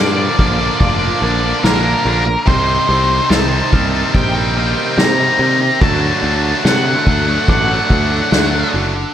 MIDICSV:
0, 0, Header, 1, 8, 480
1, 0, Start_track
1, 0, Tempo, 834492
1, 1425, Time_signature, 4, 2, 24, 8
1, 5257, End_track
2, 0, Start_track
2, 0, Title_t, "Glockenspiel"
2, 0, Program_c, 0, 9
2, 0, Note_on_c, 0, 89, 89
2, 462, Note_on_c, 0, 86, 91
2, 465, Note_off_c, 0, 89, 0
2, 944, Note_off_c, 0, 86, 0
2, 947, Note_on_c, 0, 89, 98
2, 1426, Note_off_c, 0, 89, 0
2, 1428, Note_on_c, 0, 91, 90
2, 1906, Note_off_c, 0, 91, 0
2, 2147, Note_on_c, 0, 89, 84
2, 2621, Note_off_c, 0, 89, 0
2, 2628, Note_on_c, 0, 89, 83
2, 3105, Note_on_c, 0, 91, 77
2, 3106, Note_off_c, 0, 89, 0
2, 3584, Note_off_c, 0, 91, 0
2, 3822, Note_on_c, 0, 90, 80
2, 4303, Note_off_c, 0, 90, 0
2, 4308, Note_on_c, 0, 86, 86
2, 4786, Note_off_c, 0, 86, 0
2, 4790, Note_on_c, 0, 90, 87
2, 5257, Note_off_c, 0, 90, 0
2, 5257, End_track
3, 0, Start_track
3, 0, Title_t, "Lead electric guitar"
3, 0, Program_c, 1, 29
3, 0, Note_on_c, 1, 74, 91
3, 455, Note_off_c, 1, 74, 0
3, 462, Note_on_c, 1, 74, 111
3, 942, Note_on_c, 1, 70, 94
3, 958, Note_off_c, 1, 74, 0
3, 1421, Note_on_c, 1, 72, 109
3, 1438, Note_off_c, 1, 70, 0
3, 1899, Note_on_c, 1, 81, 104
3, 1917, Note_off_c, 1, 72, 0
3, 2383, Note_on_c, 1, 79, 114
3, 2396, Note_off_c, 1, 81, 0
3, 2868, Note_on_c, 1, 82, 105
3, 2878, Note_off_c, 1, 79, 0
3, 3346, Note_off_c, 1, 82, 0
3, 3348, Note_on_c, 1, 81, 107
3, 3803, Note_off_c, 1, 81, 0
3, 3829, Note_on_c, 1, 78, 99
3, 4305, Note_off_c, 1, 78, 0
3, 4312, Note_on_c, 1, 78, 90
3, 5006, Note_off_c, 1, 78, 0
3, 5257, End_track
4, 0, Start_track
4, 0, Title_t, "Clean electric guitar"
4, 0, Program_c, 2, 27
4, 0, Note_on_c, 2, 46, 85
4, 0, Note_on_c, 2, 58, 75
4, 223, Note_off_c, 2, 58, 0
4, 465, Note_on_c, 2, 65, 88
4, 705, Note_off_c, 2, 46, 0
4, 1424, Note_off_c, 2, 65, 0
4, 1905, Note_on_c, 2, 51, 88
4, 2146, Note_on_c, 2, 58, 68
4, 2386, Note_on_c, 2, 67, 87
4, 2619, Note_off_c, 2, 58, 0
4, 2626, Note_on_c, 2, 58, 76
4, 3097, Note_off_c, 2, 51, 0
4, 3104, Note_on_c, 2, 51, 83
4, 3344, Note_off_c, 2, 51, 0
4, 3345, Note_off_c, 2, 58, 0
4, 3345, Note_off_c, 2, 67, 0
4, 4304, Note_on_c, 2, 66, 82
4, 5257, Note_off_c, 2, 66, 0
4, 5257, End_track
5, 0, Start_track
5, 0, Title_t, "Distorted electric guitar"
5, 0, Program_c, 3, 30
5, 0, Note_on_c, 3, 46, 106
5, 0, Note_on_c, 3, 50, 115
5, 0, Note_on_c, 3, 53, 118
5, 0, Note_on_c, 3, 58, 121
5, 0, Note_on_c, 3, 62, 123
5, 85, Note_off_c, 3, 62, 0
5, 91, Note_on_c, 3, 62, 71
5, 102, Note_off_c, 3, 58, 0
5, 104, Note_off_c, 3, 53, 0
5, 104, Note_on_c, 3, 58, 69
5, 111, Note_on_c, 3, 53, 66
5, 205, Note_off_c, 3, 50, 0
5, 212, Note_off_c, 3, 53, 0
5, 212, Note_on_c, 3, 50, 88
5, 219, Note_on_c, 3, 53, 84
5, 222, Note_off_c, 3, 58, 0
5, 223, Note_off_c, 3, 62, 0
5, 225, Note_on_c, 3, 58, 86
5, 230, Note_on_c, 3, 62, 90
5, 327, Note_off_c, 3, 62, 0
5, 334, Note_on_c, 3, 62, 89
5, 338, Note_off_c, 3, 58, 0
5, 341, Note_off_c, 3, 46, 0
5, 345, Note_on_c, 3, 58, 79
5, 346, Note_off_c, 3, 53, 0
5, 353, Note_on_c, 3, 53, 67
5, 564, Note_off_c, 3, 62, 0
5, 570, Note_on_c, 3, 62, 76
5, 574, Note_off_c, 3, 58, 0
5, 578, Note_off_c, 3, 50, 0
5, 581, Note_on_c, 3, 58, 76
5, 584, Note_off_c, 3, 53, 0
5, 591, Note_on_c, 3, 53, 63
5, 690, Note_off_c, 3, 53, 0
5, 691, Note_on_c, 3, 50, 76
5, 696, Note_off_c, 3, 58, 0
5, 697, Note_on_c, 3, 53, 81
5, 702, Note_off_c, 3, 62, 0
5, 703, Note_on_c, 3, 58, 80
5, 708, Note_on_c, 3, 62, 93
5, 937, Note_off_c, 3, 50, 0
5, 937, Note_on_c, 3, 46, 98
5, 939, Note_off_c, 3, 53, 0
5, 944, Note_on_c, 3, 50, 107
5, 945, Note_off_c, 3, 58, 0
5, 946, Note_on_c, 3, 53, 106
5, 950, Note_off_c, 3, 62, 0
5, 952, Note_on_c, 3, 58, 109
5, 957, Note_on_c, 3, 62, 120
5, 1048, Note_off_c, 3, 62, 0
5, 1055, Note_on_c, 3, 62, 82
5, 1058, Note_off_c, 3, 58, 0
5, 1065, Note_on_c, 3, 58, 86
5, 1068, Note_off_c, 3, 53, 0
5, 1075, Note_on_c, 3, 53, 63
5, 1169, Note_off_c, 3, 50, 0
5, 1176, Note_off_c, 3, 53, 0
5, 1176, Note_on_c, 3, 50, 78
5, 1182, Note_off_c, 3, 58, 0
5, 1183, Note_on_c, 3, 53, 81
5, 1187, Note_off_c, 3, 62, 0
5, 1189, Note_on_c, 3, 58, 93
5, 1194, Note_on_c, 3, 62, 86
5, 1292, Note_off_c, 3, 62, 0
5, 1295, Note_off_c, 3, 58, 0
5, 1296, Note_off_c, 3, 53, 0
5, 1297, Note_off_c, 3, 50, 0
5, 1301, Note_off_c, 3, 46, 0
5, 1414, Note_on_c, 3, 48, 95
5, 1422, Note_on_c, 3, 55, 96
5, 1430, Note_on_c, 3, 60, 104
5, 1434, Note_on_c, 3, 63, 102
5, 1648, Note_off_c, 3, 48, 0
5, 1655, Note_off_c, 3, 55, 0
5, 1655, Note_on_c, 3, 48, 89
5, 1662, Note_on_c, 3, 55, 89
5, 1663, Note_off_c, 3, 60, 0
5, 1668, Note_off_c, 3, 63, 0
5, 1670, Note_on_c, 3, 60, 91
5, 1674, Note_on_c, 3, 63, 97
5, 1894, Note_off_c, 3, 48, 0
5, 1900, Note_off_c, 3, 55, 0
5, 1900, Note_on_c, 3, 48, 125
5, 1907, Note_on_c, 3, 55, 106
5, 1908, Note_off_c, 3, 60, 0
5, 1914, Note_off_c, 3, 63, 0
5, 1915, Note_on_c, 3, 60, 123
5, 1921, Note_on_c, 3, 63, 111
5, 2012, Note_off_c, 3, 63, 0
5, 2018, Note_on_c, 3, 63, 74
5, 2021, Note_off_c, 3, 60, 0
5, 2028, Note_on_c, 3, 60, 65
5, 2031, Note_off_c, 3, 55, 0
5, 2038, Note_on_c, 3, 55, 65
5, 2131, Note_off_c, 3, 48, 0
5, 2138, Note_on_c, 3, 48, 88
5, 2140, Note_off_c, 3, 55, 0
5, 2147, Note_off_c, 3, 60, 0
5, 2147, Note_on_c, 3, 55, 90
5, 2152, Note_off_c, 3, 63, 0
5, 2154, Note_on_c, 3, 60, 91
5, 2159, Note_on_c, 3, 63, 93
5, 2254, Note_off_c, 3, 63, 0
5, 2261, Note_on_c, 3, 63, 93
5, 2264, Note_off_c, 3, 60, 0
5, 2271, Note_on_c, 3, 60, 78
5, 2272, Note_off_c, 3, 55, 0
5, 2279, Note_on_c, 3, 55, 65
5, 2494, Note_off_c, 3, 63, 0
5, 2501, Note_off_c, 3, 48, 0
5, 2501, Note_on_c, 3, 63, 80
5, 2503, Note_off_c, 3, 60, 0
5, 2510, Note_on_c, 3, 60, 78
5, 2513, Note_off_c, 3, 55, 0
5, 2520, Note_on_c, 3, 55, 67
5, 2616, Note_on_c, 3, 48, 79
5, 2618, Note_off_c, 3, 55, 0
5, 2623, Note_off_c, 3, 60, 0
5, 2624, Note_on_c, 3, 55, 81
5, 2629, Note_off_c, 3, 63, 0
5, 2630, Note_on_c, 3, 60, 90
5, 2636, Note_on_c, 3, 63, 92
5, 2854, Note_off_c, 3, 48, 0
5, 2861, Note_off_c, 3, 55, 0
5, 2861, Note_on_c, 3, 48, 87
5, 2866, Note_off_c, 3, 60, 0
5, 2868, Note_on_c, 3, 55, 109
5, 2872, Note_off_c, 3, 63, 0
5, 2873, Note_on_c, 3, 60, 109
5, 2879, Note_on_c, 3, 63, 106
5, 2978, Note_off_c, 3, 63, 0
5, 2984, Note_on_c, 3, 63, 81
5, 2989, Note_off_c, 3, 60, 0
5, 2996, Note_on_c, 3, 60, 71
5, 2997, Note_off_c, 3, 55, 0
5, 3004, Note_on_c, 3, 55, 71
5, 3093, Note_off_c, 3, 48, 0
5, 3100, Note_on_c, 3, 48, 78
5, 3102, Note_off_c, 3, 55, 0
5, 3108, Note_off_c, 3, 60, 0
5, 3109, Note_on_c, 3, 55, 87
5, 3115, Note_off_c, 3, 63, 0
5, 3115, Note_on_c, 3, 60, 80
5, 3122, Note_on_c, 3, 63, 86
5, 3221, Note_off_c, 3, 63, 0
5, 3224, Note_off_c, 3, 60, 0
5, 3227, Note_off_c, 3, 55, 0
5, 3327, Note_off_c, 3, 48, 0
5, 3342, Note_on_c, 3, 50, 98
5, 3349, Note_on_c, 3, 54, 106
5, 3357, Note_on_c, 3, 57, 105
5, 3360, Note_on_c, 3, 62, 112
5, 3572, Note_off_c, 3, 50, 0
5, 3579, Note_on_c, 3, 50, 77
5, 3580, Note_off_c, 3, 54, 0
5, 3586, Note_off_c, 3, 57, 0
5, 3587, Note_on_c, 3, 54, 78
5, 3591, Note_off_c, 3, 62, 0
5, 3593, Note_on_c, 3, 57, 93
5, 3598, Note_on_c, 3, 62, 91
5, 3809, Note_off_c, 3, 50, 0
5, 3816, Note_on_c, 3, 50, 101
5, 3819, Note_off_c, 3, 54, 0
5, 3824, Note_off_c, 3, 57, 0
5, 3826, Note_on_c, 3, 54, 112
5, 3830, Note_on_c, 3, 57, 102
5, 3831, Note_off_c, 3, 62, 0
5, 3838, Note_on_c, 3, 62, 115
5, 3932, Note_off_c, 3, 62, 0
5, 3939, Note_on_c, 3, 62, 69
5, 3943, Note_off_c, 3, 57, 0
5, 3949, Note_on_c, 3, 57, 72
5, 3950, Note_off_c, 3, 54, 0
5, 3957, Note_on_c, 3, 54, 60
5, 4054, Note_off_c, 3, 50, 0
5, 4061, Note_off_c, 3, 54, 0
5, 4061, Note_on_c, 3, 50, 79
5, 4067, Note_off_c, 3, 57, 0
5, 4068, Note_on_c, 3, 54, 80
5, 4073, Note_off_c, 3, 62, 0
5, 4074, Note_on_c, 3, 57, 80
5, 4080, Note_on_c, 3, 62, 94
5, 4174, Note_off_c, 3, 62, 0
5, 4181, Note_on_c, 3, 62, 80
5, 4184, Note_off_c, 3, 57, 0
5, 4191, Note_off_c, 3, 54, 0
5, 4191, Note_on_c, 3, 57, 75
5, 4198, Note_on_c, 3, 54, 65
5, 4415, Note_off_c, 3, 62, 0
5, 4421, Note_on_c, 3, 62, 69
5, 4423, Note_off_c, 3, 50, 0
5, 4426, Note_off_c, 3, 57, 0
5, 4433, Note_on_c, 3, 57, 72
5, 4434, Note_off_c, 3, 54, 0
5, 4441, Note_on_c, 3, 54, 61
5, 4541, Note_off_c, 3, 54, 0
5, 4541, Note_on_c, 3, 50, 72
5, 4546, Note_off_c, 3, 57, 0
5, 4548, Note_on_c, 3, 54, 78
5, 4553, Note_off_c, 3, 62, 0
5, 4553, Note_on_c, 3, 57, 84
5, 4559, Note_on_c, 3, 62, 84
5, 4773, Note_off_c, 3, 50, 0
5, 4780, Note_on_c, 3, 50, 99
5, 4781, Note_off_c, 3, 54, 0
5, 4786, Note_off_c, 3, 57, 0
5, 4788, Note_on_c, 3, 54, 89
5, 4793, Note_off_c, 3, 62, 0
5, 4793, Note_on_c, 3, 57, 102
5, 4799, Note_on_c, 3, 62, 103
5, 4895, Note_off_c, 3, 62, 0
5, 4902, Note_on_c, 3, 62, 77
5, 4907, Note_off_c, 3, 57, 0
5, 4914, Note_on_c, 3, 57, 71
5, 4915, Note_off_c, 3, 54, 0
5, 4922, Note_on_c, 3, 54, 64
5, 5018, Note_off_c, 3, 50, 0
5, 5025, Note_off_c, 3, 54, 0
5, 5025, Note_on_c, 3, 50, 74
5, 5032, Note_off_c, 3, 57, 0
5, 5032, Note_on_c, 3, 54, 81
5, 5037, Note_off_c, 3, 62, 0
5, 5039, Note_on_c, 3, 57, 85
5, 5043, Note_on_c, 3, 62, 88
5, 5141, Note_off_c, 3, 62, 0
5, 5142, Note_off_c, 3, 57, 0
5, 5145, Note_off_c, 3, 54, 0
5, 5251, Note_off_c, 3, 50, 0
5, 5257, End_track
6, 0, Start_track
6, 0, Title_t, "Picked electric bass"
6, 0, Program_c, 4, 34
6, 0, Note_on_c, 4, 43, 93
6, 156, Note_off_c, 4, 43, 0
6, 225, Note_on_c, 4, 34, 102
6, 396, Note_off_c, 4, 34, 0
6, 463, Note_on_c, 4, 29, 97
6, 635, Note_off_c, 4, 29, 0
6, 702, Note_on_c, 4, 34, 105
6, 874, Note_off_c, 4, 34, 0
6, 943, Note_on_c, 4, 34, 95
6, 1114, Note_off_c, 4, 34, 0
6, 1181, Note_on_c, 4, 34, 104
6, 1353, Note_off_c, 4, 34, 0
6, 1423, Note_on_c, 4, 36, 102
6, 1595, Note_off_c, 4, 36, 0
6, 1661, Note_on_c, 4, 36, 105
6, 1833, Note_off_c, 4, 36, 0
6, 1900, Note_on_c, 4, 36, 101
6, 2072, Note_off_c, 4, 36, 0
6, 2143, Note_on_c, 4, 36, 100
6, 2314, Note_off_c, 4, 36, 0
6, 2384, Note_on_c, 4, 34, 96
6, 2726, Note_off_c, 4, 34, 0
6, 2863, Note_on_c, 4, 48, 90
6, 3034, Note_off_c, 4, 48, 0
6, 3102, Note_on_c, 4, 48, 96
6, 3273, Note_off_c, 4, 48, 0
6, 3344, Note_on_c, 4, 38, 97
6, 3515, Note_off_c, 4, 38, 0
6, 3583, Note_on_c, 4, 38, 92
6, 3754, Note_off_c, 4, 38, 0
6, 3824, Note_on_c, 4, 48, 96
6, 3995, Note_off_c, 4, 48, 0
6, 4065, Note_on_c, 4, 38, 94
6, 4236, Note_off_c, 4, 38, 0
6, 4303, Note_on_c, 4, 33, 101
6, 4475, Note_off_c, 4, 33, 0
6, 4545, Note_on_c, 4, 38, 90
6, 4716, Note_off_c, 4, 38, 0
6, 4787, Note_on_c, 4, 38, 85
6, 4957, Note_off_c, 4, 38, 0
6, 5028, Note_on_c, 4, 30, 89
6, 5198, Note_off_c, 4, 30, 0
6, 5257, End_track
7, 0, Start_track
7, 0, Title_t, "Muted distorted electric guitar strokes"
7, 1299, Note_on_c, 9, 29, 63
7, 1356, Note_off_c, 9, 29, 0
7, 3228, Note_on_c, 9, 29, 63
7, 3286, Note_off_c, 9, 29, 0
7, 5148, Note_on_c, 9, 29, 52
7, 5205, Note_off_c, 9, 29, 0
7, 5257, End_track
8, 0, Start_track
8, 0, Title_t, "Drums"
8, 224, Note_on_c, 9, 36, 94
8, 282, Note_off_c, 9, 36, 0
8, 463, Note_on_c, 9, 36, 112
8, 463, Note_on_c, 9, 49, 69
8, 521, Note_off_c, 9, 36, 0
8, 521, Note_off_c, 9, 49, 0
8, 945, Note_on_c, 9, 38, 127
8, 945, Note_on_c, 9, 49, 76
8, 1002, Note_off_c, 9, 38, 0
8, 1002, Note_off_c, 9, 49, 0
8, 1422, Note_on_c, 9, 49, 68
8, 1424, Note_on_c, 9, 36, 123
8, 1479, Note_off_c, 9, 49, 0
8, 1481, Note_off_c, 9, 36, 0
8, 1903, Note_on_c, 9, 38, 122
8, 1903, Note_on_c, 9, 49, 69
8, 1960, Note_off_c, 9, 38, 0
8, 1960, Note_off_c, 9, 49, 0
8, 2145, Note_on_c, 9, 36, 94
8, 2202, Note_off_c, 9, 36, 0
8, 2385, Note_on_c, 9, 36, 112
8, 2385, Note_on_c, 9, 49, 62
8, 2442, Note_off_c, 9, 36, 0
8, 2442, Note_off_c, 9, 49, 0
8, 2865, Note_on_c, 9, 38, 126
8, 2865, Note_on_c, 9, 49, 71
8, 2923, Note_off_c, 9, 38, 0
8, 2923, Note_off_c, 9, 49, 0
8, 3345, Note_on_c, 9, 36, 127
8, 3346, Note_on_c, 9, 49, 70
8, 3403, Note_off_c, 9, 36, 0
8, 3404, Note_off_c, 9, 49, 0
8, 3826, Note_on_c, 9, 38, 127
8, 3826, Note_on_c, 9, 49, 76
8, 3883, Note_off_c, 9, 38, 0
8, 3883, Note_off_c, 9, 49, 0
8, 4065, Note_on_c, 9, 36, 89
8, 4123, Note_off_c, 9, 36, 0
8, 4303, Note_on_c, 9, 49, 67
8, 4305, Note_on_c, 9, 36, 113
8, 4360, Note_off_c, 9, 49, 0
8, 4362, Note_off_c, 9, 36, 0
8, 4546, Note_on_c, 9, 36, 85
8, 4603, Note_off_c, 9, 36, 0
8, 4787, Note_on_c, 9, 38, 118
8, 4787, Note_on_c, 9, 49, 74
8, 4845, Note_off_c, 9, 38, 0
8, 4845, Note_off_c, 9, 49, 0
8, 5257, End_track
0, 0, End_of_file